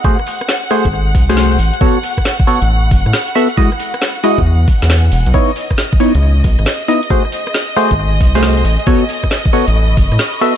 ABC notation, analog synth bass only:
X:1
M:4/4
L:1/16
Q:"Swing 16ths" 1/4=136
K:Alyd
V:1 name="Analog synth bass" clef=bass
z6 z G,,,3 ^B,,,4 A,,, z | z6 z A,,,3 F,,, A,, z4 | z6 z E,,3 z E,,3 E,,, B,,, | z6 z C,,3 B,,, G,,, z4 |
z6 z G,,,3 ^B,,,4 A,,, z | z6 z A,,,3 F,,, A,, z4 |]